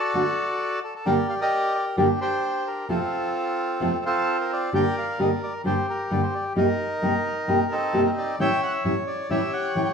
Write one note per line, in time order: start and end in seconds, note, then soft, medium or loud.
0.00 0.80 F#4 medium
0.00 0.80 A4 medium
0.00 0.80 D5 medium
0.14 0.23 D3 medium
0.14 0.23 A3 medium
0.14 0.24 D4 medium
0.14 0.24 F#4 medium
0.84 0.94 A4 medium
0.95 1.06 A4 medium
1.05 1.14 G2 medium
1.05 1.15 D3 medium
1.05 1.15 G3 medium
1.05 1.15 A#3 medium
1.05 1.15 D4 medium
1.05 1.40 G4 medium
1.05 1.15 G4 medium
1.05 1.27 A#4 medium
1.05 1.73 D5 medium
1.29 1.34 F5 medium
1.41 1.96 G4 medium
1.41 1.96 A#4 medium
1.41 1.76 D#5 medium
1.75 1.85 D5 medium
1.97 2.06 G2 medium
1.97 2.06 D3 medium
1.97 2.06 G3 medium
1.97 2.06 A#3 medium
1.97 2.85 D4 medium
1.97 2.07 D4 medium
1.97 2.20 G4 medium
1.97 2.07 G4 medium
1.97 2.08 A#4 medium
2.21 2.86 G4 medium
2.21 2.68 C5 medium
2.67 2.88 A#4 medium
2.89 2.98 F2 medium
2.89 2.98 C3 medium
2.89 2.98 F3 medium
2.89 2.98 A3 medium
2.89 2.98 C4 medium
2.89 4.04 C4 medium
2.89 4.04 F4 medium
2.89 2.98 F4 medium
2.89 4.05 A4 medium
3.80 3.89 F2 medium
3.80 3.90 C3 medium
3.80 3.90 F3 medium
3.80 3.90 A3 medium
3.80 3.90 C4 medium
3.80 3.90 F4 medium
4.05 4.70 C4 medium
4.05 4.70 F4 medium
4.05 4.37 A4 medium
4.41 4.51 A#4 medium
4.53 4.73 D5 medium
4.72 4.82 G2 medium
4.72 4.82 D3 medium
4.72 4.82 G3 medium
4.72 4.82 A#3 medium
4.72 4.82 D4 medium
4.72 4.82 G4 medium
4.72 5.62 A#4 medium
4.72 5.42 D5 medium
4.72 4.96 G5 medium
4.98 5.21 F5 medium
5.18 5.27 G2 medium
5.18 5.28 D3 medium
5.18 5.28 G3 medium
5.18 5.28 A#3 medium
5.18 5.28 D4 medium
5.18 5.28 G4 medium
5.18 5.31 D#5 medium
5.43 5.53 D5 medium
5.64 5.73 G2 medium
5.64 5.73 D3 medium
5.64 5.74 G3 medium
5.64 5.74 A#3 medium
5.64 5.74 D4 medium
5.64 5.74 G4 medium
5.64 6.53 G4 medium
5.64 5.87 C5 medium
5.90 6.12 A#4 medium
6.11 6.19 G2 medium
6.11 6.20 D3 medium
6.11 6.20 G3 medium
6.11 6.20 A#3 medium
6.11 6.20 D4 medium
6.11 6.20 G4 medium
6.11 6.22 D5 medium
6.23 6.34 C5 medium
6.35 6.45 D5 medium
6.55 6.65 G2 medium
6.55 6.65 C3 medium
6.55 6.65 G3 medium
6.55 6.65 A#3 medium
6.55 6.65 D#4 medium
6.55 7.67 D#4 medium
6.55 6.65 G4 medium
6.55 7.74 A#4 medium
7.02 7.11 G2 medium
7.02 7.11 C3 medium
7.02 7.11 G3 medium
7.02 7.11 A#3 medium
7.02 7.11 D#4 medium
7.02 7.11 G4 medium
7.47 7.56 G2 medium
7.47 7.57 C3 medium
7.47 7.57 G3 medium
7.47 7.57 A#3 medium
7.47 7.57 D#4 medium
7.47 7.57 G4 medium
7.72 8.36 C4 medium
7.72 8.36 D#4 medium
7.72 8.03 A4 medium
7.93 8.02 G2 medium
7.93 8.02 C3 medium
7.93 8.02 G3 medium
7.93 8.03 A#3 medium
7.93 8.03 D#4 medium
7.93 8.03 G4 medium
8.06 8.11 A#4 medium
8.18 8.38 D5 medium
8.39 8.48 A2 medium
8.39 8.48 E3 medium
8.39 8.48 G3 medium
8.39 8.48 C#4 medium
8.39 8.48 E4 medium
8.39 9.27 C#5 medium
8.39 8.84 E5 medium
8.39 8.61 G5 loud
8.63 8.73 F#5 medium
8.84 8.93 A2 medium
8.84 8.94 E3 medium
8.84 8.94 G3 medium
8.84 8.94 C#4 medium
8.84 8.94 E4 medium
8.84 8.95 E5 medium
9.07 9.31 D5 medium
9.29 9.39 A2 medium
9.29 9.39 E3 medium
9.29 9.39 G3 medium
9.29 9.39 C#4 medium
9.29 9.39 E4 medium
9.29 9.94 G4 medium
9.29 9.94 C#5 medium
9.29 9.51 E5 medium
9.53 9.77 F#5 medium
9.75 9.84 A2 medium
9.75 9.84 E3 medium
9.75 9.85 G3 medium
9.75 9.85 C#4 medium
9.75 9.85 E4 medium
9.75 9.81 G5 medium
9.85 9.92 F#5 medium
9.85 9.87 G5 medium